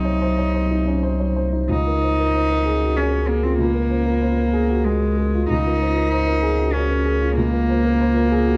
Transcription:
0.00 1.66 C2 medium
0.00 1.70 C2 medium
0.00 1.70 F#3 medium
0.00 1.37 D#4 medium
0.00 1.70 D#4 medium
0.00 0.15 C5 medium
0.00 1.66 C5 medium
0.05 0.22 C#5 medium
0.22 0.48 C5 medium
0.38 0.55 C#5 medium
0.54 0.81 C5 medium
0.71 0.97 D#4 medium
0.87 1.04 C#4 medium
1.03 1.30 C5 medium
1.20 1.37 C#5 soft
1.36 1.63 C5 medium
1.52 1.69 D#4 medium
1.69 3.54 C#2 medium
1.69 5.47 C#2 medium
1.69 5.46 C#4 medium
1.69 2.98 D#4 loud
1.69 5.47 F4 medium
1.69 5.46 A#4 medium
1.87 2.12 A#4 soft
2.03 2.19 C5 soft
2.19 2.44 A#4 medium
2.35 2.51 C5 soft
2.50 2.75 A#4 medium
2.66 2.91 G#4 medium
2.82 2.97 F#4 soft
2.97 3.29 C#4 medium
2.97 3.22 G#4 soft
3.28 3.45 A#3 medium
3.28 3.53 G#4 medium
3.43 3.58 C4 medium
3.43 3.68 F4 medium
3.58 5.46 C#2 medium
3.58 4.86 A#3 medium
3.74 4.00 A#4 soft
3.90 4.06 C5 soft
4.06 4.31 A#4 medium
4.22 4.38 C5 soft
4.37 4.63 A#4 soft
4.53 4.79 G#4 medium
4.69 4.85 F#4 soft
4.84 5.49 G#3 medium
4.84 5.12 G#4 medium
5.02 5.18 A#4 soft
5.18 5.44 G#4 soft
5.35 5.60 F4 medium
5.49 8.57 C#2 medium
5.49 7.32 C#2 medium
5.49 8.57 C#4 medium
5.49 6.75 D#4 loud
5.49 8.57 F4 medium
5.49 8.57 A#4 medium
5.66 5.91 A#4 soft
5.81 5.97 C5 soft
5.96 6.22 A#4 medium
6.13 6.28 C5 medium
6.27 6.52 A#4 medium
6.43 6.68 G#4 medium
6.59 6.74 F#4 medium
6.73 7.35 C#4 medium
6.73 6.99 G#4 medium
6.90 7.05 A#4 soft
7.05 7.30 G#4 medium
7.22 7.46 F4 medium
7.36 8.57 C#2 medium
7.36 8.57 A#3 loud
7.53 7.78 A#4 medium
7.70 7.84 C5 medium
7.85 8.09 A#4 medium
8.01 8.15 C5 medium
8.16 8.40 A#4 medium
8.32 8.55 G#4 medium
8.47 8.57 F#4 medium

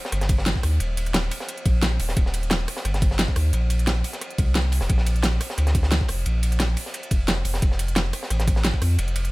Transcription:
0.05 snare medium
0.12 0.54 G1 medium
0.12 cross-stick soft
0.12 closed hi-hat loud
0.12 ride medium
0.21 snare medium
0.21 closed hi-hat soft
0.29 kick loud
0.29 closed hi-hat medium
0.29 ride medium
0.38 snare medium
0.46 snare loud
0.46 closed hi-hat loud
0.46 ride medium
0.56 kick medium
0.56 snare soft
0.63 0.79 D#2 loud
0.63 cross-stick medium
0.63 open hi-hat medium
0.63 ride medium
0.80 1.30 D#1 loud
0.80 closed hi-hat medium
0.80 ride medium
0.97 closed hi-hat medium
0.97 ride medium
1.06 closed hi-hat soft
1.06 ride soft
1.14 snare loud
1.14 closed hi-hat medium
1.14 ride medium
1.31 open hi-hat medium
1.31 ride medium
1.40 snare soft
1.49 closed hi-hat medium
1.49 ride medium
1.58 closed hi-hat soft
1.65 1.99 A#1 medium
1.65 kick loud
1.65 closed hi-hat medium
1.65 ride medium
1.83 snare loud
1.83 closed hi-hat loud
1.83 ride medium
2.00 2.15 D#1 medium
2.00 open hi-hat medium
2.00 ride medium
2.09 snare medium
2.17 2.67 D#1 loud
2.17 kick loud
2.17 closed hi-hat medium
2.17 ride medium
2.26 snare soft
2.34 closed hi-hat medium
2.34 ride medium
2.43 closed hi-hat soft
2.50 snare loud
2.50 closed hi-hat medium
2.50 ride medium
2.68 cross-stick soft
2.68 open hi-hat medium
2.68 ride medium
2.77 snare medium
2.85 3.27 G1 medium
2.85 cross-stick soft
2.85 closed hi-hat medium
2.85 ride medium
2.94 snare medium
2.94 closed hi-hat soft
3.02 kick loud
3.02 closed hi-hat medium
3.02 ride medium
3.11 snare medium
3.19 snare loud
3.19 closed hi-hat medium
3.19 ride medium
3.28 kick medium
3.28 snare soft
3.36 3.52 D#2 loud
3.36 cross-stick soft
3.36 open hi-hat medium
3.36 ride medium
3.53 4.03 A#1 medium
3.53 closed hi-hat medium
3.53 ride medium
3.70 closed hi-hat medium
3.70 ride medium
3.79 closed hi-hat soft
3.79 ride soft
3.87 snare loud
3.87 closed hi-hat medium
3.87 ride medium
4.04 open hi-hat medium
4.04 ride medium
4.13 snare soft
4.13 closed hi-hat soft
4.21 cross-stick soft
4.21 closed hi-hat medium
4.21 ride medium
4.31 closed hi-hat soft
4.38 4.80 C2 medium
4.38 kick loud
4.38 closed hi-hat medium
4.38 ride medium
4.55 snare loud
4.55 closed hi-hat medium
4.55 ride medium
4.72 open hi-hat medium
4.72 ride medium
4.81 4.89 F1 loud
4.81 snare medium
4.90 5.40 A#1 loud
4.90 kick loud
4.90 closed hi-hat medium
4.90 ride loud
4.98 snare soft
5.07 closed hi-hat medium
5.07 ride medium
5.16 closed hi-hat soft
5.23 snare loud
5.23 closed hi-hat medium
5.23 ride medium
5.41 cross-stick soft
5.41 open hi-hat medium
5.41 ride medium
5.50 snare medium
5.58 6.00 D2 medium
5.58 cross-stick soft
5.58 closed hi-hat medium
5.58 ride medium
5.67 snare medium
5.67 closed hi-hat soft
5.75 kick loud
5.75 closed hi-hat medium
5.75 ride medium
5.83 snare medium
5.91 snare loud
5.91 closed hi-hat medium
5.91 ride medium
6.01 kick medium
6.01 snare soft
6.08 6.24 F1 loud
6.08 cross-stick soft
6.08 open hi-hat medium
6.08 ride medium
6.26 6.76 A#1 loud
6.26 closed hi-hat medium
6.26 ride medium
6.43 closed hi-hat medium
6.43 ride medium
6.52 closed hi-hat soft
6.52 ride soft
6.60 snare loud
6.60 closed hi-hat medium
6.60 ride medium
6.77 open hi-hat medium
6.77 ride medium
6.86 snare soft
6.94 closed hi-hat medium
6.94 ride medium
7.03 closed hi-hat soft
7.11 7.44 F1 medium
7.11 kick loud
7.11 closed hi-hat medium
7.11 ride medium
7.28 snare loud
7.28 closed hi-hat loud
7.28 ride medium
7.45 7.61 F1 medium
7.45 open hi-hat medium
7.45 ride medium
7.54 snare medium
7.62 8.12 F1 loud
7.62 kick loud
7.62 closed hi-hat loud
7.62 ride medium
7.72 snare soft
7.79 closed hi-hat medium
7.79 ride medium
7.88 closed hi-hat soft
7.96 snare loud
7.96 closed hi-hat medium
7.96 ride medium
8.13 cross-stick soft
8.13 open hi-hat medium
8.13 ride medium
8.23 snare medium
8.30 8.72 A1 loud
8.30 cross-stick soft
8.30 closed hi-hat loud
8.30 ride medium
8.40 snare medium
8.40 closed hi-hat soft
8.48 kick loud
8.48 closed hi-hat medium
8.48 ride medium
8.56 snare medium
8.65 snare loud
8.65 closed hi-hat loud
8.65 ride medium
8.73 kick medium
8.73 snare soft
8.82 8.97 F2 loud
8.82 cross-stick soft
8.82 open hi-hat medium
8.82 ride medium
8.99 9.32 F1 loud
8.99 closed hi-hat medium
8.99 ride medium
9.08 closed hi-hat soft
9.16 closed hi-hat medium
9.16 ride medium
9.24 closed hi-hat soft
9.24 ride soft

